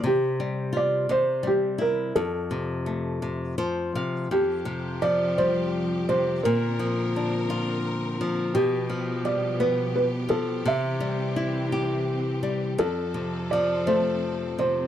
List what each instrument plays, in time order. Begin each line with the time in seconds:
0.04 nylon-string guitar C3, felt piano G4
0.40 nylon-string guitar G3
0.73 nylon-string guitar F4
0.77 felt piano D5
1.09 nylon-string guitar C3, felt piano C5
1.43 nylon-string guitar G3
1.47 felt piano G4
1.78 nylon-string guitar E4, felt piano A#4
2.15 nylon-string guitar F2, felt piano A4
2.51 nylon-string guitar C3
2.86 nylon-string guitar A3
3.22 nylon-string guitar C3
3.58 nylon-string guitar F3 C5
3.95 nylon-string guitar C3 F5
4.31 nylon-string guitar F2, string section F3 C4 G4, felt piano G4
4.65 nylon-string guitar C3
5.02 nylon-string guitar F3, felt piano D5
5.38 nylon-string guitar G3, felt piano C5
6.09 nylon-string guitar C3, felt piano C5
6.43 nylon-string guitar A#2, string section D3 A#4, felt piano A#4
6.79 nylon-string guitar F3
7.16 nylon-string guitar D4
7.50 nylon-string guitar F4
8.21 nylon-string guitar F3
8.54 nylon-string guitar B2, string section B2 F3 B3 G4, felt piano G4
8.90 nylon-string guitar F3
9.25 nylon-string guitar G3, felt piano D5
9.60 nylon-string guitar B3, felt piano B4
9.96 felt piano B4
10.29 nylon-string guitar F3, felt piano A4
10.65 nylon-string guitar C3, string section E3 C4, felt piano E5
11.00 nylon-string guitar G3
11.36 nylon-string guitar E4
11.72 nylon-string guitar G4
12.43 nylon-string guitar G3
12.78 nylon-string guitar F2, string section F3 C4 A4, felt piano A4
13.14 nylon-string guitar C3
13.51 nylon-string guitar F3, felt piano D5
13.87 nylon-string guitar A3, felt piano C5
14.59 nylon-string guitar C3, felt piano C5